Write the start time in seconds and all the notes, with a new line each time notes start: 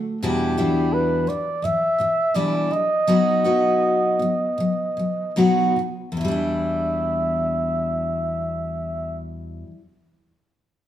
Already playing: D3 A3
0.23 E2 B2 E3 G3 D4 E4 G4
0.57 E2 B2 E3 G3 D4 E4
0.93 B4
1.27 E2 B2 D5
1.62 E2 B2 E3 E5
1.98 E2 B2 E3
2.34 E2 B2 E3 G3 D4 E4 D5
2.71 B2 F#3 D#5
3.07 B2 F#3 B3 D#4 F#4
3.44 B2 F#3 B3 D#4 F#4
4.19 B2 F#3
4.58 B2 F#3
4.97 B2 F#3
5.36 B2 F#3 B3 D#4 F#4
5.76 B2
6.12 E2
6.17 B2 E3 E5
6.25 G3 D4
6.31 E4